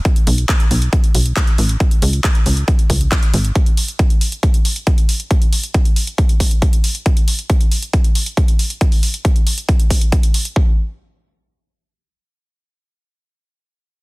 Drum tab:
HH |xxoxxxoxxxoxxxox|xxoxxxoxxxoxxxox|xxoxxxoxxxoxxxox|xxoxxxoxxxoxxxox|
CP |----x-------x---|----x-------x---|----------------|----------------|
BD |o---o---o---o---|o---o---o-o-o---|o---o---o---o---|o---o---o-o-o---|

HH |xxoxxxoxxxoxxxox|xooxxxoxxxoxxxox|----------------|----------------|
CP |----------------|----------------|----------------|----------------|
BD |o---o---o---o---|o---o---o-o-o---|o---------------|----------------|